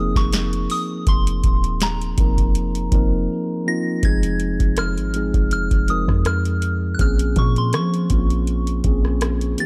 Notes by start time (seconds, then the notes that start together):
Already playing: F1 F3 A#3 C4 D#4 G#4 D#6
0.16 F1 C#6, kick, snare
0.33 snare, closed hi-hat
0.53 closed hi-hat
0.70 D#6, open hi-hat
1.07 F1 C6, kick, closed hi-hat
1.27 closed hi-hat
1.44 D#1, kick, closed hi-hat
1.64 closed hi-hat
1.81 A#5, snare, closed hi-hat
2.02 closed hi-hat
2.17 F1 F3 A#3 C4 D#4 A#4, kick, closed hi-hat
2.38 kick, closed hi-hat
2.55 closed hi-hat
2.75 closed hi-hat
2.92 F1 F3 A#3 C4 D#4 A#4, kick, closed hi-hat
3.66 F3 A#3 C4 D#4 F4 A#6
4.03 F1 F3 G#3 C4 D#4 G#4 G#6, kick, closed hi-hat
4.23 closed hi-hat
4.40 closed hi-hat
4.60 F1, kick, closed hi-hat
4.77 F6, cross-stick, closed hi-hat
4.97 G#1, closed hi-hat
5.14 F3 G#3 C4 D#4 G#4, closed hi-hat
5.34 F1, kick, closed hi-hat
5.51 F6, closed hi-hat
5.71 F1, kick, closed hi-hat
5.88 F3 G#3 C4 D#4 A#4 D#6, closed hi-hat
6.08 F2, kick, cross-stick
6.25 F6, cross-stick, closed hi-hat
6.45 closed hi-hat
6.62 closed hi-hat
6.95 F#6
6.99 A#1 F3 A#3 C4 C#4 G#4 F6, kick, closed hi-hat
7.19 closed hi-hat
7.36 A#2 C#6, kick, closed hi-hat
7.56 C6, closed hi-hat
7.73 F3 C#6, cross-stick, closed hi-hat
7.94 closed hi-hat
8.10 A#1 F3 A#3 C4 C#4 F4, kick, closed hi-hat
8.30 closed hi-hat
8.47 closed hi-hat
8.67 closed hi-hat
8.84 A#1 F3 A#3 C4 C#4 G#4, kick, closed hi-hat
9.05 cross-stick
9.21 cross-stick, closed hi-hat
9.41 closed hi-hat
9.58 E3 A#3 C4 D4 G4 A6, closed hi-hat